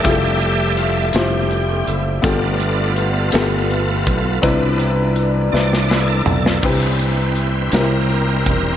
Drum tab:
CC |------------|------------|------------|x-----------|
HH |x-x-x-x-x-x-|x-x-x-x-x-x-|x-x-x-------|--x-x-x-x-x-|
SD |------o-----|------o-----|------ooo--o|------o-----|
FT |------------|------------|----------o-|------------|
BD |o-----------|o---------o-|o-----------|o---------o-|